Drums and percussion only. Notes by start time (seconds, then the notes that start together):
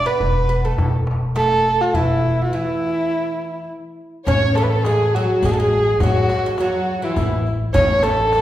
0.20 tombak dum
0.78 tombak dum
1.07 tombak tek
1.36 tombak tek
1.65 tombak ka
1.94 tombak dum
4.26 riq, tombak dum
4.55 riq, tombak tek
4.85 riq, tombak tek
5.14 tombak ka
5.42 riq, tombak dum
5.72 riq
6.00 riq, tombak dum
6.29 riq, tombak tek
6.58 riq, tombak tek
6.87 tombak ka
7.16 riq, tombak dum
7.47 riq
7.74 riq, tombak dum
8.03 riq, tombak tek
8.32 riq, tombak tek